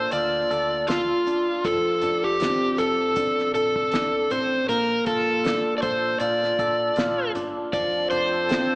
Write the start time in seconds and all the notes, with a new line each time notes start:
Already playing: A#3 D4 F4 A4 C5
0.11 D2 F4 D5, closed hi-hat
0.51 D2 A4, closed hi-hat
0.87 F4, snare, closed hi-hat
1.27 D4, closed hi-hat
1.64 F1 F3 A4, kick, closed hi-hat
2.01 F1 D4, closed hi-hat
2.24 G4
2.40 C4, snare, closed hi-hat
2.78 F1 A4, closed hi-hat
3.16 A1 D4, kick, closed hi-hat
3.39 snare
3.54 A#1 A4, closed hi-hat
3.76 kick
3.92 C2 D4, snare, closed hi-hat
4.31 A1 C4 C5, closed hi-hat
4.69 A#1 A#3 A#4, closed hi-hat
5.06 A#1 F4 A4, kick, closed hi-hat
5.44 D4, snare, closed hi-hat
5.78 D5
5.82 A#1 A4 C5, kick, closed hi-hat
6.20 A#2 F4 D5, closed hi-hat
6.43 snare
6.59 A#2 A4, kick, closed hi-hat
6.96 A#1 F4, snare, closed hi-hat
7.34 G1 D4, closed hi-hat
7.73 F1 F3 C4 D4 A4 D5, kick, closed hi-hat
8.11 F1 D4 C5, closed hi-hat
8.49 C4, snare, closed hi-hat